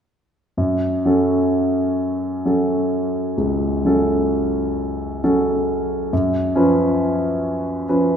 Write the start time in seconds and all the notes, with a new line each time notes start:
0.57 F#2
1.05 F#3 C#4 A4
2.46 F#3 C#4 A4
3.37 C#2
3.85 F#3 C#4 A4
5.24 F#3 C#4 A4
6.13 F#2
6.55 F3 C#4 B4
7.89 F3 C#4 B4